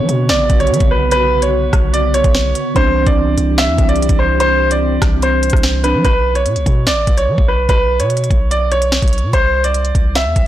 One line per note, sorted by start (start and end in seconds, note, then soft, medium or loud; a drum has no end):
0.00 2.73 C#3 medium
0.00 2.71 D3 medium
0.00 2.72 B3 medium
0.00 2.73 B3 medium
0.00 2.73 F#4 medium
0.00 0.26 C#5 medium
0.09 0.31 B2 loud
0.09 closed hi-hat medium
0.29 0.49 A1 loud
0.29 0.58 D5 medium
0.29 snare loud
0.50 0.72 B1 loud
0.50 kick medium
0.50 closed hi-hat medium
0.60 0.89 C#5 medium
0.60 closed hi-hat soft
0.67 0.80 F#3 loud
0.67 closed hi-hat medium
0.74 closed hi-hat medium
0.80 1.69 B1 loud
0.80 kick loud
0.80 closed hi-hat medium
0.91 1.10 B4 medium
1.11 1.41 B4 loud
1.11 closed hi-hat medium
1.42 1.91 C#5 medium
1.42 closed hi-hat medium
1.73 2.22 B1 loud
1.73 kick loud
1.73 cross-stick loud
1.73 closed hi-hat medium
1.93 2.12 D5 medium
1.93 closed hi-hat medium
2.14 2.72 C#5 medium
2.14 closed hi-hat medium
2.24 2.54 B1 loud
2.24 kick loud
2.24 closed hi-hat medium
2.35 snare loud
2.55 closed hi-hat medium
2.74 3.05 C2 loud
2.74 5.79 E3 medium
2.74 5.80 C4 medium
2.74 6.01 C4 medium
2.74 5.81 D4 medium
2.74 6.01 E4 medium
2.74 6.01 G4 medium
2.74 3.05 C5 loud
2.74 kick loud
2.74 closed hi-hat medium
3.07 3.36 C2 loud
3.07 3.55 D5 medium
3.07 kick medium
3.07 closed hi-hat medium
3.37 3.70 C2 loud
3.37 closed hi-hat medium
3.58 3.87 E5 medium
3.58 snare loud
3.68 3.78 E2 loud
3.78 4.01 C2 loud
3.78 kick loud
3.78 closed hi-hat medium
3.89 4.18 D5 medium
3.89 closed hi-hat soft
3.96 4.09 B1 loud
3.96 closed hi-hat medium
4.02 closed hi-hat medium
4.09 4.98 C2 loud
4.09 kick medium
4.09 closed hi-hat medium
4.19 4.38 C5 medium
4.40 4.69 C5 loud
4.40 closed hi-hat medium
4.71 5.19 D5 medium
4.71 closed hi-hat medium
5.02 5.51 C2 loud
5.02 kick loud
5.02 cross-stick loud
5.02 snare medium
5.02 closed hi-hat medium
5.22 5.81 C5 medium
5.22 closed hi-hat medium
5.43 closed hi-hat medium
5.50 5.96 C2 loud
5.50 kick medium
5.50 cross-stick medium
5.50 closed hi-hat medium
5.57 closed hi-hat soft
5.63 snare loud
5.83 6.04 E3 medium
5.83 6.05 C4 soft
5.83 6.05 D4 medium
5.83 6.03 B4 medium
5.83 closed hi-hat medium
5.94 6.04 G3 loud
6.04 6.47 B1 loud
6.04 6.33 B4 loud
6.04 kick loud
6.04 closed hi-hat medium
6.35 6.84 C#5 medium
6.35 closed hi-hat medium
6.46 6.57 B2 loud
6.46 closed hi-hat medium
6.56 6.66 B1 loud
6.56 closed hi-hat soft
6.66 6.88 B2 loud
6.66 kick medium
6.66 closed hi-hat medium
6.87 7.06 A1 medium
6.87 7.16 D5 medium
6.87 snare loud
6.87 closed hi-hat medium
7.07 7.29 B1 loud
7.07 kick medium
7.07 closed hi-hat medium
7.17 7.46 C#5 medium
7.17 closed hi-hat medium
7.28 7.38 F#3 loud
7.38 7.68 B1 loud
7.38 kick medium
7.48 7.67 B4 medium
7.69 8.01 B1 loud
7.69 7.98 B4 loud
7.69 kick loud
7.69 closed hi-hat medium
8.00 8.29 B2 loud
8.00 8.48 C#5 medium
8.00 closed hi-hat medium
8.10 closed hi-hat medium
8.17 closed hi-hat medium
8.24 closed hi-hat soft
8.31 9.00 B1 loud
8.31 kick medium
8.31 closed hi-hat medium
8.51 8.70 D5 medium
8.51 closed hi-hat medium
8.72 9.30 C#5 medium
8.72 closed hi-hat medium
8.82 closed hi-hat medium
8.92 snare loud
9.02 9.24 B1 loud
9.02 kick medium
9.02 closed hi-hat medium
9.08 closed hi-hat medium
9.13 closed hi-hat medium
9.18 closed hi-hat soft
9.23 9.33 B2 loud
9.33 9.92 C2 loud
9.33 9.62 C5 loud
9.33 kick loud
9.33 closed hi-hat medium
9.64 10.12 D5 medium
9.64 closed hi-hat medium
9.74 closed hi-hat medium
9.85 closed hi-hat soft
9.95 10.27 C2 loud
9.95 kick medium
9.95 closed hi-hat medium
10.15 10.45 E5 medium
10.15 snare loud
10.15 closed hi-hat medium
10.26 10.36 E2 loud
10.36 10.47 C2 loud
10.36 kick medium
10.36 closed hi-hat medium